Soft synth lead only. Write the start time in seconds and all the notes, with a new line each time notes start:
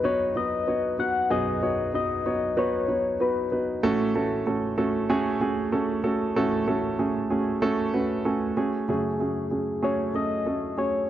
0.05 C#5
0.37 D#5
1.00 F#5
1.31 D#5
1.95 D#5
2.59 C#5
3.21 B4
8.90 G#4
9.84 C#5
10.16 D#5
10.79 C#5